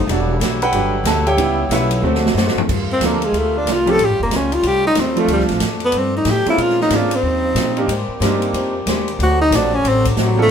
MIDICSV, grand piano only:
0, 0, Header, 1, 2, 480
1, 0, Start_track
1, 0, Key_signature, -2, "minor"
1, 0, Tempo, 325203
1, 131, Time_signature, 4, 2, 24, 8
1, 15511, End_track
2, 0, Start_track
2, 0, Title_t, "Grand piano"
2, 0, Program_c, 0, 0
2, 140, Note_on_c, 0, 55, 46
2, 147, Note_on_c, 0, 62, 50
2, 156, Note_on_c, 0, 66, 56
2, 490, Note_off_c, 0, 55, 0
2, 494, Note_off_c, 0, 62, 0
2, 499, Note_off_c, 0, 66, 0
2, 923, Note_on_c, 0, 83, 101
2, 927, Note_on_c, 0, 71, 85
2, 928, Note_on_c, 0, 78, 79
2, 934, Note_on_c, 0, 79, 75
2, 1092, Note_on_c, 0, 55, 53
2, 1098, Note_on_c, 0, 62, 49
2, 1099, Note_on_c, 0, 66, 54
2, 1363, Note_off_c, 0, 55, 0
2, 1366, Note_off_c, 0, 62, 0
2, 1367, Note_off_c, 0, 66, 0
2, 1528, Note_off_c, 0, 83, 0
2, 1530, Note_off_c, 0, 71, 0
2, 1531, Note_off_c, 0, 78, 0
2, 1534, Note_off_c, 0, 79, 0
2, 1579, Note_on_c, 0, 81, 92
2, 1589, Note_on_c, 0, 69, 63
2, 1867, Note_off_c, 0, 81, 0
2, 1872, Note_off_c, 0, 69, 0
2, 1873, Note_on_c, 0, 79, 91
2, 1880, Note_on_c, 0, 67, 66
2, 1881, Note_on_c, 0, 73, 68
2, 1881, Note_on_c, 0, 76, 63
2, 2026, Note_on_c, 0, 55, 48
2, 2032, Note_on_c, 0, 59, 51
2, 2044, Note_on_c, 0, 64, 65
2, 2390, Note_off_c, 0, 55, 0
2, 2393, Note_off_c, 0, 59, 0
2, 2400, Note_off_c, 0, 64, 0
2, 2482, Note_off_c, 0, 79, 0
2, 2485, Note_off_c, 0, 67, 0
2, 2486, Note_off_c, 0, 73, 0
2, 2486, Note_off_c, 0, 76, 0
2, 2541, Note_on_c, 0, 64, 65
2, 2541, Note_on_c, 0, 73, 63
2, 2542, Note_on_c, 0, 76, 79
2, 2543, Note_on_c, 0, 71, 66
2, 2980, Note_off_c, 0, 64, 0
2, 2980, Note_off_c, 0, 73, 0
2, 2980, Note_off_c, 0, 76, 0
2, 2981, Note_off_c, 0, 71, 0
2, 2995, Note_on_c, 0, 57, 60
2, 3001, Note_on_c, 0, 60, 54
2, 3012, Note_on_c, 0, 66, 65
2, 3911, Note_off_c, 0, 57, 0
2, 3914, Note_off_c, 0, 60, 0
2, 3920, Note_off_c, 0, 66, 0
2, 4459, Note_on_c, 0, 53, 60
2, 4462, Note_on_c, 0, 58, 59
2, 4467, Note_on_c, 0, 60, 55
2, 4469, Note_on_c, 0, 62, 59
2, 4485, Note_on_c, 0, 69, 67
2, 4724, Note_off_c, 0, 53, 0
2, 4726, Note_off_c, 0, 58, 0
2, 4728, Note_off_c, 0, 60, 0
2, 4729, Note_off_c, 0, 62, 0
2, 4737, Note_off_c, 0, 69, 0
2, 5694, Note_on_c, 0, 53, 80
2, 5702, Note_on_c, 0, 57, 69
2, 5714, Note_on_c, 0, 61, 74
2, 5717, Note_on_c, 0, 60, 75
2, 5727, Note_on_c, 0, 67, 91
2, 5860, Note_off_c, 0, 53, 0
2, 5864, Note_off_c, 0, 57, 0
2, 5870, Note_off_c, 0, 61, 0
2, 5871, Note_off_c, 0, 60, 0
2, 5876, Note_off_c, 0, 67, 0
2, 7609, Note_on_c, 0, 53, 69
2, 7620, Note_on_c, 0, 57, 67
2, 7624, Note_on_c, 0, 60, 72
2, 7632, Note_on_c, 0, 62, 60
2, 7641, Note_on_c, 0, 65, 79
2, 8241, Note_off_c, 0, 53, 0
2, 8246, Note_off_c, 0, 57, 0
2, 8248, Note_off_c, 0, 60, 0
2, 8252, Note_off_c, 0, 62, 0
2, 8257, Note_off_c, 0, 65, 0
2, 9537, Note_on_c, 0, 56, 74
2, 9546, Note_on_c, 0, 58, 58
2, 9559, Note_on_c, 0, 60, 64
2, 9566, Note_on_c, 0, 61, 64
2, 9573, Note_on_c, 0, 65, 76
2, 10165, Note_off_c, 0, 56, 0
2, 10170, Note_off_c, 0, 58, 0
2, 10176, Note_off_c, 0, 60, 0
2, 10180, Note_off_c, 0, 61, 0
2, 10184, Note_off_c, 0, 65, 0
2, 10211, Note_on_c, 0, 56, 65
2, 10223, Note_on_c, 0, 58, 60
2, 10226, Note_on_c, 0, 60, 65
2, 10234, Note_on_c, 0, 61, 60
2, 10240, Note_on_c, 0, 65, 73
2, 10482, Note_off_c, 0, 56, 0
2, 10488, Note_off_c, 0, 58, 0
2, 10489, Note_off_c, 0, 60, 0
2, 10493, Note_off_c, 0, 61, 0
2, 10497, Note_off_c, 0, 65, 0
2, 11465, Note_on_c, 0, 58, 69
2, 11471, Note_on_c, 0, 60, 65
2, 11481, Note_on_c, 0, 62, 64
2, 11484, Note_on_c, 0, 63, 63
2, 11489, Note_on_c, 0, 67, 76
2, 11628, Note_off_c, 0, 58, 0
2, 11630, Note_off_c, 0, 60, 0
2, 11635, Note_off_c, 0, 62, 0
2, 11637, Note_off_c, 0, 63, 0
2, 11639, Note_off_c, 0, 67, 0
2, 12125, Note_on_c, 0, 58, 66
2, 12126, Note_on_c, 0, 60, 63
2, 12136, Note_on_c, 0, 62, 59
2, 12140, Note_on_c, 0, 63, 63
2, 12146, Note_on_c, 0, 67, 74
2, 12850, Note_off_c, 0, 58, 0
2, 12850, Note_off_c, 0, 60, 0
2, 12855, Note_off_c, 0, 62, 0
2, 12857, Note_off_c, 0, 63, 0
2, 12860, Note_off_c, 0, 67, 0
2, 15307, Note_on_c, 0, 58, 74
2, 15316, Note_on_c, 0, 60, 77
2, 15321, Note_on_c, 0, 62, 70
2, 15326, Note_on_c, 0, 65, 67
2, 15335, Note_on_c, 0, 69, 87
2, 15511, Note_off_c, 0, 58, 0
2, 15511, Note_off_c, 0, 60, 0
2, 15511, Note_off_c, 0, 62, 0
2, 15511, Note_off_c, 0, 65, 0
2, 15511, Note_off_c, 0, 69, 0
2, 15511, End_track
0, 0, End_of_file